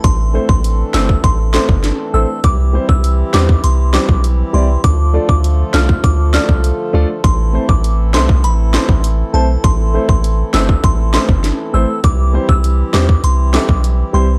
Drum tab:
HH |x---x---x---x---|x---x---x---x---|x---x---x---x---|x---x---x---x---|
CP |------x---x-----|------x---x-----|------x---x-----|------x---x-----|
SD |------o---o-o---|------o---o-----|------o---o-----|------o---o-----|
BD |o--o---oo--o----|o--o---o---o----|o--o---oo--o----|o--o---o---o----|

HH |x---x---x---x---|x---x---x---x---|
CP |------x---x-----|------x---x-----|
SD |------o---o-o---|------o---o-----|
BD |o--o---oo--o----|o--o---o---o----|